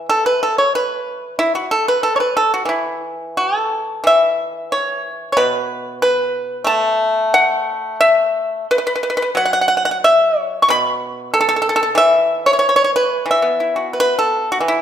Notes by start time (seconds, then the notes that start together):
Already playing: E3
0.09 A4
0.26 B4
0.43 A4
0.58 C#5
0.75 B4
1.39 E4
1.55 F#4
1.71 A4
1.88 B4
2.03 A4
2.16 C#5
2.20 B4
2.37 A4
2.54 F#4
2.65 E3 E4
3.37 F#4
3.58 A4
4.04 E3 E5
4.72 C#5
5.32 C#5
5.37 B2 B4
6.02 B4
6.64 A3 A5
7.34 F#5
8.01 E5
8.71 B4
8.78 B4
8.87 B4
8.96 B4
9.03 B4
9.10 B4
9.17 B4
9.22 B4
9.35 F#3 F#5
9.45 F#5
9.53 F#5
9.61 F#5
9.68 F#5
9.77 F#5
9.85 F#5
9.91 F#5
10.04 E5
10.41 C#5
10.62 C#6
10.69 B2 B5
11.34 A4
11.41 A4
11.49 A4
11.56 A4
11.62 A4
11.69 A4
11.76 A4
11.83 A4
11.95 E3 E5
12.46 C#5
12.53 C#5
12.59 C#5
12.69 C#5
12.76 C#5
12.84 C#5
12.96 B4
13.26 E3
13.31 E5
13.42 B3
13.60 E4
13.76 F#4
13.93 B4
14.00 B4
14.19 A4
14.52 F#4
14.60 E3
14.68 E4